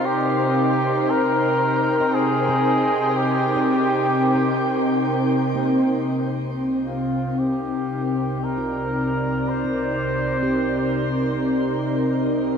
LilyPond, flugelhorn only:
\new Staff \with { instrumentName = "Flugelhorn" } { \time 3/4 \key c \minor \tempo 4 = 57 g'4 bes'4 aes'4 | g'2 r4 | r8 f'8 g'4 bes'4 | c''2~ c''8 r8 | }